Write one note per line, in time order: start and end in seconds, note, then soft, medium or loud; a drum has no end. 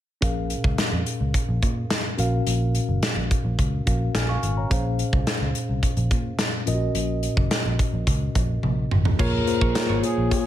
0.21 0.54 A#1 medium
0.21 1.02 A#2 medium
0.21 2.14 C#4 medium
0.21 2.14 G#4 medium
0.21 2.15 A#4 medium
0.21 2.15 F5 medium
0.21 kick medium
0.21 closed hi-hat medium
0.50 closed hi-hat medium
0.64 0.75 C#2 medium
0.64 kick medium
0.78 snare medium
0.78 closed hi-hat medium
0.92 1.03 F2 medium
1.06 closed hi-hat medium
1.21 1.31 C#2 medium
1.34 kick medium
1.34 closed hi-hat medium
1.49 1.59 A#1 medium
1.62 1.84 A#2 medium
1.62 kick medium
1.62 closed hi-hat medium
1.90 snare loud
1.90 closed hi-hat medium
2.17 2.39 A#1 medium
2.17 2.99 A#2 medium
2.17 3.83 C#4 medium
2.17 3.83 F#4 medium
2.17 3.83 A#4 medium
2.17 3.84 F5 medium
2.17 closed hi-hat medium
2.47 2.78 A#1 medium
2.47 closed hi-hat medium
2.75 closed hi-hat medium
2.89 2.99 F#1 medium
3.03 snare medium
3.03 closed hi-hat medium
3.17 3.27 A#1 medium
3.31 kick medium
3.31 closed hi-hat medium
3.45 3.55 A#1 medium
3.59 3.80 C#2 medium
3.59 kick medium
3.59 closed hi-hat medium
3.86 4.08 A#1 medium
3.86 4.69 C#4 soft
3.86 4.71 F#4 soft
3.86 4.71 A#4 soft
3.86 4.15 F5 soft
3.86 kick medium
3.86 closed hi-hat medium
4.15 4.36 A#1 medium
4.15 4.28 G#5 soft
4.15 4.28 F6 medium
4.15 snare loud
4.15 closed hi-hat medium
4.29 4.56 F5 medium
4.29 4.56 C#6 medium
4.43 4.64 G#1 medium
4.43 closed hi-hat medium
4.57 4.84 C#5 soft
4.57 4.84 A#5 medium
4.70 5.02 A#1 loud
4.70 5.51 A#2 medium
4.70 6.63 C#4 medium
4.70 6.63 G#4 medium
4.70 6.64 C5 medium
4.70 6.64 F5 medium
4.70 kick loud
4.70 closed hi-hat medium
4.99 closed hi-hat medium
5.13 5.23 C2 medium
5.13 kick medium
5.27 snare loud
5.27 closed hi-hat medium
5.41 5.51 C#2 medium
5.55 closed hi-hat medium
5.69 5.80 C2 medium
5.83 kick medium
5.83 closed hi-hat medium
5.97 6.07 A#1 medium
5.97 closed hi-hat soft
6.11 6.32 A#2 medium
6.11 kick medium
6.11 closed hi-hat medium
6.39 snare loud
6.39 closed hi-hat medium
6.66 6.88 A#1 medium
6.66 7.47 A#2 medium
6.66 8.87 C#4 medium
6.66 6.73 F4 medium
6.66 8.87 A#4 medium
6.66 8.88 D#5 medium
6.66 closed hi-hat medium
6.73 8.90 F#4 medium
6.95 7.27 A#1 loud
6.95 closed hi-hat medium
7.23 closed hi-hat medium
7.37 7.48 F#1 medium
7.37 kick medium
7.51 snare loud
7.51 closed hi-hat medium
7.65 7.76 A#1 medium
7.79 kick medium
7.79 closed hi-hat medium
7.93 8.04 A#1 medium
8.07 8.28 C#2 medium
8.07 kick medium
8.07 closed hi-hat medium
8.35 8.56 A#1 medium
8.35 kick medium
8.35 closed hi-hat medium
8.63 8.85 A#1 medium
8.63 high tom soft
8.91 9.13 G#1 medium
8.91 mid tom medium
9.05 floor tom medium
9.19 9.40 A#1 loud
9.19 9.99 A#2 medium
9.19 9.40 A#3 medium
9.19 9.40 F4 medium
9.19 9.36 F4 medium
9.19 9.41 G#4 medium
9.19 9.33 G#4 medium
9.19 10.00 A#4 medium
9.19 9.41 C#5 medium
9.19 9.32 C#5 medium
9.19 kick loud
9.19 crash medium
9.33 muted clean electric guitar stroke soft
9.47 9.68 A#3 medium
9.47 9.68 F4 medium
9.47 9.69 G#4 medium
9.47 9.69 C5 medium
9.47 muted clean electric guitar stroke soft
9.47 closed hi-hat medium
9.61 9.72 A#1 medium
9.61 9.74 F4 soft
9.61 9.75 G#4 medium
9.61 9.74 C#5 medium
9.61 kick medium
9.75 9.96 A#3 medium
9.75 9.96 F4 medium
9.75 9.97 G#4 medium
9.75 9.97 C#5 medium
9.75 muted clean electric guitar stroke soft
9.75 snare loud
9.75 closed hi-hat medium
9.89 10.00 G#1 medium
9.89 10.02 F4 medium
9.89 10.03 G#4 medium
9.89 10.03 C#5 medium
10.03 10.24 A#3 medium
10.03 10.24 F4 medium
10.03 10.25 G#4 medium
10.03 10.30 G#4 medium
10.03 10.25 C#5 medium
10.03 muted clean electric guitar stroke soft
10.03 closed hi-hat medium
10.18 10.28 A#1 medium
10.18 muted clean electric guitar stroke soft
10.31 10.46 A#3 medium
10.31 10.46 F4 medium
10.31 10.46 G#4 medium
10.31 10.46 C#5 medium
10.31 muted clean electric guitar stroke soft
10.31 kick medium
10.31 closed hi-hat medium